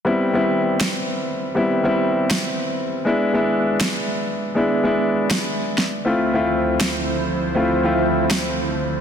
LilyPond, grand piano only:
\new Staff \with { instrumentName = "Grand piano" } { \time 4/4 \key g \mixolydian \tempo 4 = 160 <g b c' e'>8. <g b c' e'>16 r2. | <g b c' e'>8. <g b c' e'>16 r2. | <gis b d' e'>8. <gis b d' e'>16 r2. | <gis b d' e'>8. <gis b d' e'>16 r2. |
<a c' e' f'>8. <a c' e' f'>16 r2. | <a c' e' f'>8. <a c' e' f'>16 r2. | }